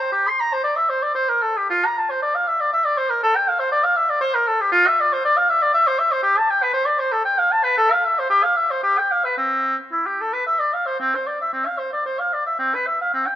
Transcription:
oboe
0.00 C5
0.12 G4
0.28 C6
0.40 A#5
0.53 C5
0.64 D5
0.76 E5
0.89 C5
1.03 D5
1.15 C5
1.29 A#4
1.42 A4
1.57 G4
1.70 F4
1.86 A#5
1.98 A5
2.10 C5
2.22 D5
2.35 F5
2.48 E5
2.60 D5
2.73 E5
2.85 D5
2.97 C5
3.10 A#4
3.23 A4
3.36 G5
3.48 F5
3.60 C5
3.71 D5
3.84 F5
3.97 E5
4.09 D5
4.21 C5
4.34 A#4
4.48 A4
4.61 G4
4.72 F4
4.87 E5
5.01 D5
5.13 C5
5.25 D5
5.37 F5
5.50 E5
5.62 D5
5.74 E5
5.87 C5
5.99 E5
6.12 C5
6.23 G4
6.38 A5
6.50 G5
6.62 B4
6.74 C5
6.86 D5
6.99 C5
7.12 A4
7.25 G5
7.38 F5
7.52 A5
7.64 B4
7.77 A4
7.92 F5
8.05 E5
8.19 C5
8.30 G4
8.43 F5
8.57 E5
8.71 C5
8.83 G4
8.98 G5
9.11 F5
9.25 B4
9.38 C4
9.92 E4
10.06 G4
10.21 A4
10.33 B4
10.47 E5
10.59 D5
10.74 F5
10.86 C5
11.00 C4
11.15 C5
11.27 D5
11.41 E5
11.53 C4
11.66 F5
11.78 C5
11.93 D5
12.06 C5
12.19 F5
12.33 D5
12.46 E5
12.59 C4
12.75 B4
12.87 E5
13.01 F5
13.14 C4
13.27 G5

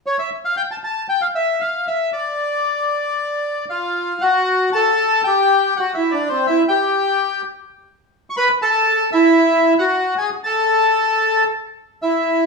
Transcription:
bandoneon
0.06 C#5
0.19 E5
0.45 F5
0.57 G5
0.71 A5
0.84 A5
1.09 G5
1.21 F5
1.35 E5
1.61 F5
1.87 E5
2.13 D5
3.70 F4 F5
4.21 F#4 F#5
4.73 A4 A5
5.24 G4 G5
5.76 F#4 F#5
5.94 E4 E5
6.11 D4 D5
6.29 C4 C5
6.47 E4 E5
6.68 G4 G5
8.30 C#6
8.37 B4 B5
8.62 A4 A5
9.12 E4 E5
9.79 F#4 F#5
10.18 G#4 G#5
10.44 A4 A5
12.02 E4 E5

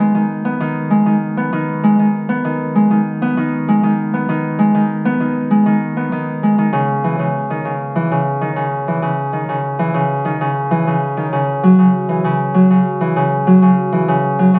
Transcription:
harp
Already playing: D#3 B3
0.00 G#3
0.15 D#3
0.45 B3
0.60 D#3
0.90 G#3
1.06 D#3
1.37 B3
1.53 D#3
1.84 G#3
1.99 D#3
2.29 B3
2.45 D#3
2.75 G#3
2.91 D#3
3.22 B3
3.37 D#3
3.68 G#3
3.83 D#3
4.14 B3
4.29 D#3
4.59 G#3
4.75 D#3
5.05 B3
5.20 D#3
5.51 G#3
5.66 D#3
5.97 B3
6.12 D#3
6.43 G#3
6.58 D#3
6.73 C#3
7.04 E3
7.19 C#3
7.50 D#3
7.65 C#3
7.95 E3
8.11 C#3
8.41 D#3
8.56 C#3
8.88 E3
9.02 C#3
9.33 D#3
9.49 C#3
9.79 E3
9.94 C#3
10.25 D#3
10.41 C#3
10.71 E3
10.87 C#3
11.17 D#3
11.33 C#3
11.63 F#3
11.79 C#3
12.09 E3
12.24 C#3
12.54 F#3
12.70 C#3
13.01 E3
13.16 C#3
13.47 F#3
13.62 C#3
13.93 E3
14.08 C#3
14.39 F#3
14.54 C#3

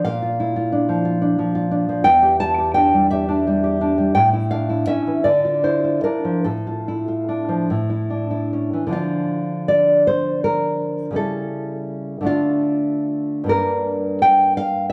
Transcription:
nylon-string guitar
0.05 A#2 F5
0.22 F4
0.40 E4
0.56 F4
0.72 D4
0.89 F3
1.05 F4
1.22 D4
1.39 F3
1.55 F4
1.71 D4
1.89 F3
2.04 E2 G5
2.23 G4
2.40 F4 A5
2.58 G4
2.74 D4 G5
2.93 G3
3.11 G4 E5
3.29 D4
3.47 G3
3.64 G4
3.81 D4
3.98 G3
4.15 A2 G5
4.33 E4
4.51 D4 F5
4.69 E4
4.87 C#4 E5
5.07 E3
5.24 D3 D5
5.45 F4
5.64 E4 C5
5.84 F4
6.04 D4 A#4
6.25 F3
6.44 A2 A4
6.67 F4
6.88 E4
7.08 F4
7.29 D4
7.49 F3
7.70 A2
7.90 E4
8.10 D4
8.31 E4
8.53 C#4
8.73 E3
8.87 D3 F3
8.91 D4 F4
9.68 D5
10.07 C5
10.44 A#4
11.11 C#3 G3
11.15 E4 A4
12.21 D3 A3
12.25 D4 F4
13.44 G2 A#3
13.48 D4 A#4
14.22 G5
14.57 F5

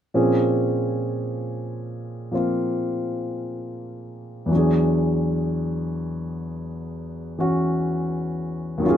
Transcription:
grand piano
0.14 A#2 F3 C4 C#4 G#4
2.32 F3 A#3 C4 F4
4.46 E2 E3
4.51 F#3 D4
4.57 G#4
7.38 E3 C#4 F#4
8.78 D#2 D#3 F#3
8.84 C#4 F4
8.89 G#4

